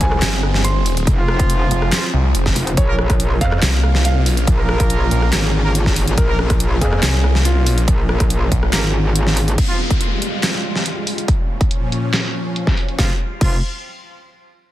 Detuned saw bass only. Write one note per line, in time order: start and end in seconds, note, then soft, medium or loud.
0.22 1.05 G1 medium
1.71 1.91 F1 loud
2.13 2.33 C2 loud
2.35 2.54 F1 loud
3.62 4.21 C2 loud
4.21 4.46 B1 loud
5.11 5.31 A#1 loud
7.03 7.62 C2 medium
7.62 7.86 B1 medium
8.52 8.71 A#1 loud